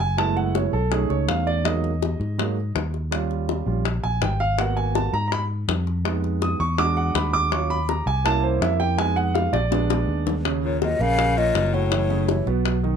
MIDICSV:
0, 0, Header, 1, 6, 480
1, 0, Start_track
1, 0, Key_signature, -6, "minor"
1, 0, Tempo, 366748
1, 242, Time_signature, 4, 2, 24, 8
1, 16969, End_track
2, 0, Start_track
2, 0, Title_t, "Flute"
2, 0, Program_c, 0, 73
2, 13936, Note_on_c, 0, 73, 81
2, 14150, Note_off_c, 0, 73, 0
2, 14173, Note_on_c, 0, 75, 92
2, 14413, Note_on_c, 0, 77, 112
2, 14433, Note_off_c, 0, 75, 0
2, 14895, Note_on_c, 0, 75, 98
2, 14915, Note_off_c, 0, 77, 0
2, 15366, Note_on_c, 0, 73, 84
2, 15385, Note_off_c, 0, 75, 0
2, 16322, Note_off_c, 0, 73, 0
2, 16969, End_track
3, 0, Start_track
3, 0, Title_t, "Grand piano"
3, 0, Program_c, 1, 0
3, 0, Note_on_c, 1, 80, 100
3, 226, Note_on_c, 1, 56, 56
3, 230, Note_off_c, 1, 80, 0
3, 231, Note_on_c, 1, 57, 50
3, 236, Note_on_c, 1, 59, 48
3, 237, Note_on_c, 1, 81, 99
3, 241, Note_on_c, 1, 64, 61
3, 473, Note_off_c, 1, 81, 0
3, 478, Note_on_c, 1, 78, 88
3, 713, Note_off_c, 1, 78, 0
3, 721, Note_on_c, 1, 73, 73
3, 919, Note_off_c, 1, 56, 0
3, 921, Note_off_c, 1, 57, 0
3, 924, Note_off_c, 1, 59, 0
3, 927, Note_off_c, 1, 64, 0
3, 955, Note_off_c, 1, 73, 0
3, 957, Note_on_c, 1, 69, 89
3, 1185, Note_on_c, 1, 57, 58
3, 1193, Note_off_c, 1, 69, 0
3, 1195, Note_on_c, 1, 61, 53
3, 1199, Note_on_c, 1, 68, 82
3, 1206, Note_on_c, 1, 63, 65
3, 1434, Note_off_c, 1, 68, 0
3, 1439, Note_on_c, 1, 73, 85
3, 1674, Note_off_c, 1, 73, 0
3, 1679, Note_on_c, 1, 77, 91
3, 1915, Note_off_c, 1, 77, 0
3, 1922, Note_on_c, 1, 74, 90
3, 2107, Note_off_c, 1, 57, 0
3, 2112, Note_off_c, 1, 61, 0
3, 2118, Note_off_c, 1, 63, 0
3, 2149, Note_on_c, 1, 54, 56
3, 2152, Note_on_c, 1, 56, 46
3, 2156, Note_off_c, 1, 74, 0
3, 2159, Note_on_c, 1, 58, 50
3, 2163, Note_on_c, 1, 75, 75
3, 2165, Note_on_c, 1, 63, 60
3, 2476, Note_off_c, 1, 54, 0
3, 2477, Note_off_c, 1, 56, 0
3, 2481, Note_off_c, 1, 58, 0
3, 2484, Note_off_c, 1, 63, 0
3, 3118, Note_on_c, 1, 54, 53
3, 3119, Note_on_c, 1, 56, 47
3, 3123, Note_on_c, 1, 58, 49
3, 3126, Note_on_c, 1, 63, 56
3, 3337, Note_off_c, 1, 54, 0
3, 3338, Note_off_c, 1, 56, 0
3, 3340, Note_off_c, 1, 58, 0
3, 3342, Note_off_c, 1, 63, 0
3, 3552, Note_off_c, 1, 75, 0
3, 4073, Note_on_c, 1, 55, 56
3, 4083, Note_on_c, 1, 61, 49
3, 4087, Note_on_c, 1, 65, 59
3, 4774, Note_off_c, 1, 55, 0
3, 4781, Note_off_c, 1, 61, 0
3, 4788, Note_off_c, 1, 65, 0
3, 4794, Note_on_c, 1, 55, 48
3, 4801, Note_on_c, 1, 61, 45
3, 4807, Note_on_c, 1, 65, 53
3, 5015, Note_off_c, 1, 55, 0
3, 5019, Note_off_c, 1, 61, 0
3, 5023, Note_off_c, 1, 65, 0
3, 5281, Note_on_c, 1, 80, 91
3, 5516, Note_off_c, 1, 80, 0
3, 5523, Note_on_c, 1, 79, 79
3, 5757, Note_off_c, 1, 79, 0
3, 5761, Note_on_c, 1, 77, 104
3, 5995, Note_on_c, 1, 58, 51
3, 5996, Note_off_c, 1, 77, 0
3, 6000, Note_on_c, 1, 59, 49
3, 6009, Note_on_c, 1, 66, 58
3, 6009, Note_on_c, 1, 78, 88
3, 6237, Note_on_c, 1, 80, 85
3, 6240, Note_off_c, 1, 78, 0
3, 6474, Note_off_c, 1, 80, 0
3, 6484, Note_on_c, 1, 81, 83
3, 6683, Note_off_c, 1, 58, 0
3, 6686, Note_off_c, 1, 59, 0
3, 6691, Note_off_c, 1, 66, 0
3, 6717, Note_off_c, 1, 81, 0
3, 6721, Note_on_c, 1, 82, 97
3, 6887, Note_off_c, 1, 82, 0
3, 6907, Note_on_c, 1, 82, 76
3, 6941, Note_off_c, 1, 82, 0
3, 6966, Note_on_c, 1, 83, 107
3, 7110, Note_off_c, 1, 83, 0
3, 7913, Note_on_c, 1, 56, 52
3, 7922, Note_on_c, 1, 59, 54
3, 7931, Note_on_c, 1, 63, 61
3, 8405, Note_on_c, 1, 87, 90
3, 8601, Note_off_c, 1, 56, 0
3, 8606, Note_off_c, 1, 59, 0
3, 8611, Note_off_c, 1, 63, 0
3, 8637, Note_off_c, 1, 87, 0
3, 8637, Note_on_c, 1, 85, 102
3, 8873, Note_off_c, 1, 85, 0
3, 8875, Note_on_c, 1, 56, 59
3, 8883, Note_on_c, 1, 62, 56
3, 8886, Note_on_c, 1, 86, 108
3, 8890, Note_on_c, 1, 66, 64
3, 9117, Note_off_c, 1, 86, 0
3, 9121, Note_on_c, 1, 78, 83
3, 9354, Note_off_c, 1, 78, 0
3, 9364, Note_on_c, 1, 83, 90
3, 9595, Note_off_c, 1, 83, 0
3, 9599, Note_on_c, 1, 86, 120
3, 9790, Note_off_c, 1, 56, 0
3, 9794, Note_off_c, 1, 62, 0
3, 9797, Note_off_c, 1, 66, 0
3, 9833, Note_off_c, 1, 86, 0
3, 9837, Note_on_c, 1, 54, 54
3, 9842, Note_on_c, 1, 61, 52
3, 9848, Note_on_c, 1, 85, 81
3, 9850, Note_on_c, 1, 65, 62
3, 10077, Note_off_c, 1, 85, 0
3, 10081, Note_on_c, 1, 83, 106
3, 10158, Note_off_c, 1, 54, 0
3, 10161, Note_off_c, 1, 61, 0
3, 10164, Note_off_c, 1, 65, 0
3, 10313, Note_off_c, 1, 83, 0
3, 10325, Note_on_c, 1, 82, 82
3, 10555, Note_off_c, 1, 82, 0
3, 10562, Note_on_c, 1, 80, 96
3, 10791, Note_on_c, 1, 58, 63
3, 10793, Note_off_c, 1, 80, 0
3, 10799, Note_on_c, 1, 61, 55
3, 10806, Note_on_c, 1, 81, 109
3, 10808, Note_on_c, 1, 64, 66
3, 11035, Note_on_c, 1, 72, 77
3, 11036, Note_off_c, 1, 81, 0
3, 11270, Note_off_c, 1, 72, 0
3, 11279, Note_on_c, 1, 76, 86
3, 11512, Note_off_c, 1, 76, 0
3, 11514, Note_on_c, 1, 79, 102
3, 11706, Note_off_c, 1, 58, 0
3, 11710, Note_off_c, 1, 61, 0
3, 11715, Note_off_c, 1, 64, 0
3, 11746, Note_on_c, 1, 56, 58
3, 11749, Note_off_c, 1, 79, 0
3, 11752, Note_on_c, 1, 59, 51
3, 11758, Note_on_c, 1, 80, 102
3, 11763, Note_on_c, 1, 63, 61
3, 11991, Note_off_c, 1, 80, 0
3, 11992, Note_on_c, 1, 78, 100
3, 12227, Note_off_c, 1, 78, 0
3, 12230, Note_on_c, 1, 77, 88
3, 12435, Note_off_c, 1, 56, 0
3, 12438, Note_off_c, 1, 59, 0
3, 12444, Note_off_c, 1, 63, 0
3, 12466, Note_off_c, 1, 77, 0
3, 12472, Note_on_c, 1, 74, 96
3, 12704, Note_on_c, 1, 56, 60
3, 12711, Note_on_c, 1, 59, 54
3, 12718, Note_on_c, 1, 62, 73
3, 13502, Note_off_c, 1, 74, 0
3, 13622, Note_off_c, 1, 56, 0
3, 13626, Note_off_c, 1, 59, 0
3, 13629, Note_off_c, 1, 62, 0
3, 13676, Note_on_c, 1, 49, 73
3, 13679, Note_on_c, 1, 61, 73
3, 14070, Note_off_c, 1, 49, 0
3, 14071, Note_off_c, 1, 61, 0
3, 14157, Note_on_c, 1, 54, 60
3, 14161, Note_on_c, 1, 66, 64
3, 14354, Note_off_c, 1, 54, 0
3, 14356, Note_off_c, 1, 66, 0
3, 14395, Note_on_c, 1, 58, 68
3, 14399, Note_on_c, 1, 70, 71
3, 14789, Note_off_c, 1, 58, 0
3, 14792, Note_off_c, 1, 70, 0
3, 14872, Note_on_c, 1, 61, 75
3, 14877, Note_on_c, 1, 73, 71
3, 15268, Note_off_c, 1, 61, 0
3, 15271, Note_off_c, 1, 73, 0
3, 15355, Note_on_c, 1, 54, 75
3, 15360, Note_on_c, 1, 66, 70
3, 15553, Note_off_c, 1, 54, 0
3, 15556, Note_off_c, 1, 66, 0
3, 15600, Note_on_c, 1, 52, 62
3, 15603, Note_on_c, 1, 64, 64
3, 15796, Note_off_c, 1, 52, 0
3, 15798, Note_off_c, 1, 64, 0
3, 15836, Note_on_c, 1, 49, 79
3, 15840, Note_on_c, 1, 61, 76
3, 16034, Note_off_c, 1, 49, 0
3, 16036, Note_off_c, 1, 61, 0
3, 16078, Note_on_c, 1, 52, 65
3, 16081, Note_on_c, 1, 64, 61
3, 16275, Note_off_c, 1, 52, 0
3, 16277, Note_off_c, 1, 64, 0
3, 16319, Note_on_c, 1, 47, 88
3, 16321, Note_on_c, 1, 59, 82
3, 16713, Note_off_c, 1, 47, 0
3, 16714, Note_off_c, 1, 59, 0
3, 16796, Note_on_c, 1, 51, 71
3, 16801, Note_on_c, 1, 63, 74
3, 16969, Note_off_c, 1, 51, 0
3, 16969, Note_off_c, 1, 63, 0
3, 16969, End_track
4, 0, Start_track
4, 0, Title_t, "Baritone saxophone"
4, 0, Program_c, 2, 67
4, 13924, Note_on_c, 2, 46, 69
4, 14144, Note_off_c, 2, 46, 0
4, 14160, Note_on_c, 2, 46, 75
4, 14402, Note_on_c, 2, 49, 88
4, 14422, Note_off_c, 2, 46, 0
4, 14881, Note_on_c, 2, 46, 85
4, 14900, Note_off_c, 2, 49, 0
4, 15358, Note_on_c, 2, 45, 73
4, 15378, Note_off_c, 2, 46, 0
4, 16319, Note_off_c, 2, 45, 0
4, 16969, End_track
5, 0, Start_track
5, 0, Title_t, "Fingered electric bass"
5, 0, Program_c, 3, 33
5, 0, Note_on_c, 3, 30, 84
5, 881, Note_off_c, 3, 30, 0
5, 951, Note_on_c, 3, 35, 88
5, 1403, Note_off_c, 3, 35, 0
5, 1431, Note_on_c, 3, 37, 73
5, 1661, Note_off_c, 3, 37, 0
5, 1677, Note_on_c, 3, 40, 92
5, 2805, Note_off_c, 3, 40, 0
5, 2875, Note_on_c, 3, 44, 93
5, 3550, Note_off_c, 3, 44, 0
5, 3599, Note_on_c, 3, 39, 84
5, 4726, Note_off_c, 3, 39, 0
5, 4796, Note_on_c, 3, 34, 94
5, 5247, Note_off_c, 3, 34, 0
5, 5280, Note_on_c, 3, 34, 72
5, 5506, Note_off_c, 3, 34, 0
5, 5516, Note_on_c, 3, 32, 91
5, 6644, Note_off_c, 3, 32, 0
5, 6711, Note_on_c, 3, 44, 96
5, 7386, Note_off_c, 3, 44, 0
5, 7433, Note_on_c, 3, 41, 89
5, 8561, Note_off_c, 3, 41, 0
5, 8634, Note_on_c, 3, 40, 93
5, 9307, Note_off_c, 3, 40, 0
5, 9353, Note_on_c, 3, 39, 86
5, 10480, Note_off_c, 3, 39, 0
5, 10550, Note_on_c, 3, 36, 90
5, 11223, Note_off_c, 3, 36, 0
5, 11264, Note_on_c, 3, 41, 88
5, 12394, Note_off_c, 3, 41, 0
5, 12468, Note_on_c, 3, 34, 96
5, 13142, Note_off_c, 3, 34, 0
5, 13188, Note_on_c, 3, 39, 88
5, 14316, Note_off_c, 3, 39, 0
5, 14387, Note_on_c, 3, 34, 91
5, 15062, Note_off_c, 3, 34, 0
5, 15110, Note_on_c, 3, 30, 86
5, 16238, Note_off_c, 3, 30, 0
5, 16312, Note_on_c, 3, 35, 92
5, 16969, Note_off_c, 3, 35, 0
5, 16969, End_track
6, 0, Start_track
6, 0, Title_t, "Drums"
6, 2, Note_on_c, 9, 60, 35
6, 133, Note_off_c, 9, 60, 0
6, 241, Note_on_c, 9, 60, 70
6, 372, Note_off_c, 9, 60, 0
6, 482, Note_on_c, 9, 60, 38
6, 612, Note_off_c, 9, 60, 0
6, 720, Note_on_c, 9, 60, 60
6, 851, Note_off_c, 9, 60, 0
6, 1199, Note_on_c, 9, 60, 68
6, 1330, Note_off_c, 9, 60, 0
6, 1442, Note_on_c, 9, 60, 35
6, 1573, Note_off_c, 9, 60, 0
6, 1682, Note_on_c, 9, 60, 70
6, 1682, Note_on_c, 9, 61, 77
6, 1813, Note_off_c, 9, 60, 0
6, 1813, Note_off_c, 9, 61, 0
6, 1927, Note_on_c, 9, 60, 36
6, 2058, Note_off_c, 9, 60, 0
6, 2164, Note_on_c, 9, 60, 68
6, 2295, Note_off_c, 9, 60, 0
6, 2407, Note_on_c, 9, 60, 37
6, 2538, Note_off_c, 9, 60, 0
6, 2650, Note_on_c, 9, 60, 58
6, 2781, Note_off_c, 9, 60, 0
6, 2891, Note_on_c, 9, 60, 34
6, 3022, Note_off_c, 9, 60, 0
6, 3134, Note_on_c, 9, 60, 64
6, 3265, Note_off_c, 9, 60, 0
6, 3607, Note_on_c, 9, 60, 64
6, 3607, Note_on_c, 9, 61, 81
6, 3738, Note_off_c, 9, 60, 0
6, 3738, Note_off_c, 9, 61, 0
6, 3847, Note_on_c, 9, 60, 34
6, 3978, Note_off_c, 9, 60, 0
6, 4088, Note_on_c, 9, 60, 67
6, 4219, Note_off_c, 9, 60, 0
6, 4330, Note_on_c, 9, 60, 35
6, 4461, Note_off_c, 9, 60, 0
6, 4568, Note_on_c, 9, 60, 61
6, 4699, Note_off_c, 9, 60, 0
6, 5044, Note_on_c, 9, 60, 68
6, 5175, Note_off_c, 9, 60, 0
6, 5283, Note_on_c, 9, 60, 35
6, 5414, Note_off_c, 9, 60, 0
6, 5519, Note_on_c, 9, 60, 67
6, 5519, Note_on_c, 9, 61, 80
6, 5650, Note_off_c, 9, 60, 0
6, 5650, Note_off_c, 9, 61, 0
6, 5760, Note_on_c, 9, 60, 34
6, 5891, Note_off_c, 9, 60, 0
6, 6001, Note_on_c, 9, 60, 69
6, 6132, Note_off_c, 9, 60, 0
6, 6244, Note_on_c, 9, 60, 36
6, 6375, Note_off_c, 9, 60, 0
6, 6483, Note_on_c, 9, 60, 67
6, 6614, Note_off_c, 9, 60, 0
6, 6725, Note_on_c, 9, 60, 36
6, 6856, Note_off_c, 9, 60, 0
6, 6964, Note_on_c, 9, 60, 63
6, 7095, Note_off_c, 9, 60, 0
6, 7443, Note_on_c, 9, 60, 70
6, 7443, Note_on_c, 9, 61, 82
6, 7574, Note_off_c, 9, 60, 0
6, 7574, Note_off_c, 9, 61, 0
6, 7684, Note_on_c, 9, 60, 35
6, 7815, Note_off_c, 9, 60, 0
6, 7923, Note_on_c, 9, 60, 73
6, 8054, Note_off_c, 9, 60, 0
6, 8166, Note_on_c, 9, 60, 37
6, 8297, Note_off_c, 9, 60, 0
6, 8401, Note_on_c, 9, 60, 63
6, 8532, Note_off_c, 9, 60, 0
6, 8879, Note_on_c, 9, 60, 67
6, 9010, Note_off_c, 9, 60, 0
6, 9123, Note_on_c, 9, 60, 33
6, 9254, Note_off_c, 9, 60, 0
6, 9361, Note_on_c, 9, 60, 70
6, 9361, Note_on_c, 9, 61, 79
6, 9492, Note_off_c, 9, 60, 0
6, 9492, Note_off_c, 9, 61, 0
6, 9604, Note_on_c, 9, 60, 35
6, 9735, Note_off_c, 9, 60, 0
6, 9843, Note_on_c, 9, 60, 69
6, 9974, Note_off_c, 9, 60, 0
6, 10085, Note_on_c, 9, 60, 38
6, 10216, Note_off_c, 9, 60, 0
6, 10324, Note_on_c, 9, 60, 62
6, 10455, Note_off_c, 9, 60, 0
6, 10566, Note_on_c, 9, 60, 36
6, 10697, Note_off_c, 9, 60, 0
6, 10805, Note_on_c, 9, 60, 75
6, 10936, Note_off_c, 9, 60, 0
6, 11283, Note_on_c, 9, 60, 67
6, 11283, Note_on_c, 9, 61, 83
6, 11414, Note_off_c, 9, 60, 0
6, 11414, Note_off_c, 9, 61, 0
6, 11518, Note_on_c, 9, 60, 36
6, 11649, Note_off_c, 9, 60, 0
6, 11760, Note_on_c, 9, 60, 68
6, 11891, Note_off_c, 9, 60, 0
6, 12002, Note_on_c, 9, 60, 38
6, 12133, Note_off_c, 9, 60, 0
6, 12242, Note_on_c, 9, 60, 66
6, 12373, Note_off_c, 9, 60, 0
6, 12480, Note_on_c, 9, 60, 81
6, 12611, Note_off_c, 9, 60, 0
6, 12720, Note_on_c, 9, 60, 82
6, 12851, Note_off_c, 9, 60, 0
6, 12961, Note_on_c, 9, 60, 92
6, 13092, Note_off_c, 9, 60, 0
6, 13437, Note_on_c, 9, 61, 91
6, 13568, Note_off_c, 9, 61, 0
6, 13681, Note_on_c, 9, 60, 69
6, 13812, Note_off_c, 9, 60, 0
6, 14158, Note_on_c, 9, 60, 58
6, 14289, Note_off_c, 9, 60, 0
6, 14641, Note_on_c, 9, 60, 63
6, 14772, Note_off_c, 9, 60, 0
6, 15120, Note_on_c, 9, 60, 68
6, 15120, Note_on_c, 9, 61, 75
6, 15251, Note_off_c, 9, 60, 0
6, 15251, Note_off_c, 9, 61, 0
6, 15598, Note_on_c, 9, 60, 69
6, 15729, Note_off_c, 9, 60, 0
6, 15840, Note_on_c, 9, 60, 35
6, 15971, Note_off_c, 9, 60, 0
6, 16079, Note_on_c, 9, 60, 59
6, 16210, Note_off_c, 9, 60, 0
6, 16321, Note_on_c, 9, 60, 36
6, 16452, Note_off_c, 9, 60, 0
6, 16563, Note_on_c, 9, 60, 64
6, 16693, Note_off_c, 9, 60, 0
6, 16806, Note_on_c, 9, 60, 34
6, 16937, Note_off_c, 9, 60, 0
6, 16969, End_track
0, 0, End_of_file